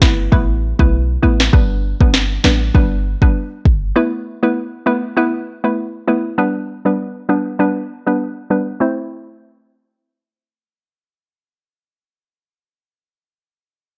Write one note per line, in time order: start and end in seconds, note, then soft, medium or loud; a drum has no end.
0.02 0.28 G1 medium
0.02 0.30 A3 medium
0.02 0.30 B3 medium
0.02 0.30 E4 medium
0.02 0.30 B4 medium
0.02 kick medium
0.02 snare loud
0.32 0.73 A1 loud
0.32 0.53 A3 loud
0.32 0.53 B3 medium
0.32 0.53 E4 medium
0.32 0.53 B4 loud
0.32 kick medium
0.79 1.17 B1 medium
0.79 0.98 A3 medium
0.79 0.98 B3 medium
0.79 0.98 E4 medium
0.79 0.98 B4 medium
0.79 kick medium
1.22 1.49 A1 medium
1.22 1.44 A3 medium
1.22 1.44 B3 medium
1.22 1.44 E4 medium
1.22 1.44 B4 medium
1.40 snare loud
1.53 1.94 G1 loud
1.53 1.96 G3 medium
1.53 1.96 B3 medium
1.53 1.96 D4 medium
1.53 1.97 B4 loud
1.53 kick loud
2.00 2.38 G1 medium
2.00 2.41 G3 medium
2.00 2.41 B3 medium
2.00 2.41 D4 medium
2.00 2.41 B4 medium
2.00 kick medium
2.14 snare loud
2.44 2.70 A1 medium
2.44 2.72 G3 medium
2.44 2.72 B3 medium
2.44 2.72 D4 medium
2.44 2.72 B4 medium
2.44 snare loud
2.74 3.15 G1 loud
2.74 2.96 G3 medium
2.74 2.96 B3 medium
2.74 2.96 D4 medium
2.74 2.96 B4 loud
2.74 kick medium
3.22 3.33 G1 medium
3.22 3.40 G3 medium
3.22 3.40 B3 medium
3.22 3.41 D4 medium
3.22 3.41 B4 medium
3.22 kick medium
3.65 3.92 G1 medium
3.65 kick medium
3.96 4.39 A3 medium
3.96 4.39 B3 medium
3.96 4.39 E4 medium
3.96 4.39 B4 loud
4.43 4.83 A3 medium
4.43 4.83 B3 medium
4.43 4.83 E4 medium
4.43 4.83 B4 medium
4.86 5.14 A3 medium
4.86 5.15 B3 medium
4.86 5.15 E4 medium
4.86 5.15 B4 medium
5.17 5.38 A3 medium
5.17 5.38 B3 medium
5.17 5.38 E4 medium
5.17 5.38 B4 loud
5.64 5.83 A3 medium
5.64 5.83 B3 medium
5.64 5.83 E4 medium
5.64 5.83 B4 medium
6.07 6.29 A3 medium
6.07 6.29 B3 medium
6.07 6.29 E4 medium
6.07 6.29 B4 medium
6.38 6.81 G3 medium
6.38 6.81 B3 medium
6.38 6.81 D4 medium
6.38 6.81 B4 loud
6.85 7.26 G3 medium
6.85 7.26 B3 medium
6.85 7.26 D4 medium
6.85 7.26 B4 medium
7.29 7.57 G3 medium
7.29 7.57 B3 medium
7.29 7.57 D4 medium
7.29 7.57 B4 medium
7.59 7.80 G3 medium
7.59 7.81 B3 medium
7.59 7.81 D4 medium
7.59 7.81 B4 loud
8.06 8.25 G3 medium
8.06 8.25 B3 medium
8.06 8.25 D4 medium
8.06 8.26 B4 medium
8.50 8.71 G3 medium
8.50 8.71 B3 medium
8.50 8.72 D4 medium
8.50 8.72 B4 medium
8.80 12.69 A3 medium
8.80 12.69 C4 medium
8.80 12.69 E4 medium
8.80 12.69 C5 medium